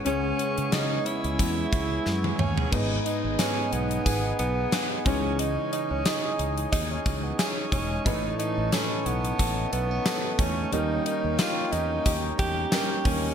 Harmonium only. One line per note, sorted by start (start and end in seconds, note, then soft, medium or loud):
0.00 2.68 B3 medium
0.00 2.69 G#4 medium
0.00 2.69 C#5 medium
0.00 2.69 G#5 medium
2.72 5.03 D#4 medium
2.72 5.04 G#4 medium
2.72 5.04 B4 medium
2.72 8.02 G#5 medium
5.05 10.68 D#4 medium
5.05 8.03 C#5 medium
5.05 8.03 D#5 medium
8.05 10.70 A4 medium
8.05 13.34 C#5 medium
8.05 10.70 A5 medium
10.72 13.34 D#4 medium
10.72 13.34 A#4 medium
10.72 13.34 G5 medium